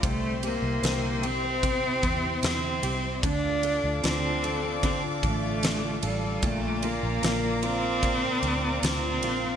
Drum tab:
RD |xxxxxxxx|xxxxxxxx|xxxxxxxx|
SD |--o---o-|--o---o-|--o---o-|
BD |o---oo--|o---oo--|o---o---|